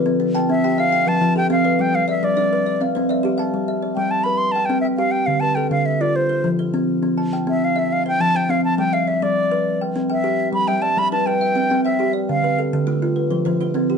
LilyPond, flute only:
\new Staff \with { instrumentName = "Flute" } { \time 12/8 \key g \mixolydian \tempo 4. = 137 r4. e''4 f''4 a''4 g''8 f''4 | g''8 f''8 e''8 d''2 r2 r8 | r4. g''8 a''8 b''8 c'''8 a''8 g''8 e''8 f''8 g''8 | f''8 a''8 g''8 f''8 e''8 d''8 c''4 r2 |
r4. e''8 f''8 e''8 f''8 g''8 a''8 g''8 f''8 a''8 | g''8 f''8 e''8 d''2 r4 e''4. | b''8 g''8 a''8 b''8 a''8 g''2 e''4 r8 | f''4 r1 r4 | }